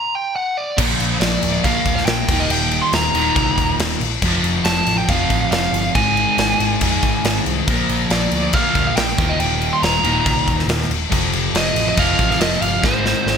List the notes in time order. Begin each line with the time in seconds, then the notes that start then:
Already playing: A#5
0.15 G5
0.36 F#5
0.57 D5
0.77 A#1 A#2 F3 A#3, kick, crash
1.00 A#1, crash
1.20 A#1 D5, snare, crash
1.43 D1, crash
1.53 D5
1.63 A#1 A#2 F3 A#3 F5, kick, crash
1.86 D1, kick, crash
1.96 F5, snare
2.06 A#1 G5, snare, crash
2.28 D#1 D#2 A#2 D#3, kick, crash
2.40 D#5
2.50 D#1 G5, crash
2.71 crash
2.82 C6
2.93 D#1 A#5, snare, crash
3.14 D#1 D#2 A#2 D#3, crash
3.36 C2, kick, crash
3.58 D#1, kick, crash
3.79 D#1, snare, crash
4.01 A#1, crash
4.22 F1 F2 C3 F3, kick, crash
4.43 F1, crash
4.65 F1 A5, snare, crash
4.86 A1, crash
4.98 G5
5.08 F1 F2 C3 F3 F5, kick, crash
5.30 A1, kick, crash
5.51 F1 F5, snare, crash
5.73 G1, crash
5.95 G#1 G#2 D#3 G#3 G#5, kick, crash
6.17 crash
6.38 G#1, snare, crash
6.60 G#1, crash
6.81 F2 G#2 D#3 G#3, kick, crash
7.02 G#1, kick, crash
7.24 G#1, snare, crash
7.46 C2, crash
7.67 A#1 A#2 F3 A#3, kick, crash
7.89 A#1, crash
8.10 A#1 D5, snare, crash
8.31 D2, crash
8.44 D5
8.53 A#1 A#2 F3 A#3 F5, kick, crash
8.75 D2, kick, crash
8.87 F5
8.97 A#1 G5, snare, crash
9.09 snare
9.17 D#1 D#2 A#2 D#3, kick, crash
9.29 D#5
9.40 D#1 G5, crash
9.61 crash
9.73 C6
9.83 D#1 A#5, snare, crash
10.03 D#1 D#2 A#2 D#3, crash
10.26 C2, kick, crash
10.48 D#1, kick, crash
10.59 snare
10.68 D#1, snare, crash
10.81 snare
10.89 D#1, crash
11.10 F1 F2 C3 F3, kick, crash
11.32 F1, crash
11.53 F1 D#5, snare, crash
11.74 A1, crash
11.89 D#5
11.96 F1 F2 C3 F3 F5, kick, crash
12.19 A1, kick, crash
12.31 F5, snare
12.40 F1 D#5, snare, crash
12.52 snare
12.62 G1 F5, crash
12.82 G#1 G#2 D#3 G#3 C5, kick, snare
13.06 snare
13.26 G#1, snare